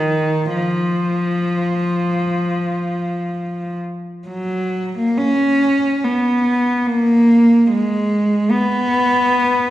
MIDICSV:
0, 0, Header, 1, 2, 480
1, 0, Start_track
1, 0, Tempo, 500000
1, 9313, End_track
2, 0, Start_track
2, 0, Title_t, "Cello"
2, 0, Program_c, 0, 42
2, 0, Note_on_c, 0, 51, 70
2, 530, Note_off_c, 0, 51, 0
2, 531, Note_on_c, 0, 53, 63
2, 3603, Note_off_c, 0, 53, 0
2, 4109, Note_on_c, 0, 54, 64
2, 4735, Note_off_c, 0, 54, 0
2, 4784, Note_on_c, 0, 58, 62
2, 4971, Note_on_c, 0, 61, 76
2, 4986, Note_off_c, 0, 58, 0
2, 5794, Note_off_c, 0, 61, 0
2, 5798, Note_on_c, 0, 59, 62
2, 6594, Note_on_c, 0, 58, 71
2, 6595, Note_off_c, 0, 59, 0
2, 7384, Note_off_c, 0, 58, 0
2, 7402, Note_on_c, 0, 56, 74
2, 8166, Note_off_c, 0, 56, 0
2, 8170, Note_on_c, 0, 59, 83
2, 9313, Note_off_c, 0, 59, 0
2, 9313, End_track
0, 0, End_of_file